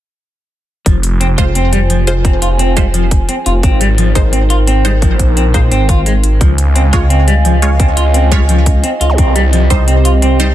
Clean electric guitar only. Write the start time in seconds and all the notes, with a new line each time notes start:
0.86 F3
1.21 C4
1.38 F4
1.55 C4
1.73 G3
1.90 F3
2.25 C4
2.42 F4
2.59 C4
2.77 G3
2.94 F3
3.29 C4
3.46 F4
3.63 C4
3.81 G3
3.98 F3
4.33 C4
4.50 F4
4.67 C4
4.85 G3
5.02 F3
5.37 C4
5.54 F4
5.71 C4
5.89 F4
6.06 G#3
6.41 F3
6.76 C4
6.93 F4
7.10 C4
7.28 G3
7.45 F3
7.80 C4
7.97 F4
8.14 C4
8.32 G3
8.49 F3
8.84 C4
9.01 F4
9.18 C4
9.36 G3
9.53 F3
9.88 C4
10.05 F4
10.22 C4
10.40 G3